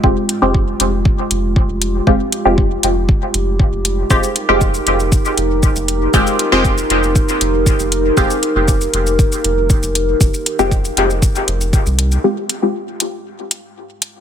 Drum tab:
HH |--x---x---x---x-|--x---x---x---x-|--x---x---x---x-|--x---x---x---x-|
SH |----------------|----------------|xx--xx-xxx--xx--|xx--xx-xxx--xx--|
BD |o---o---o---o---|o---o---o---o---|o---o---o---o---|o---o---o---o---|

HH |--x---x---x---x-|--x---x---x---x-|--x---x---x---x-|
SH |xx--xx-xxx--xx--|xx-xxx-xxx-xxx-x|----------------|
BD |o---o---o---o---|o---o---o---o---|----------------|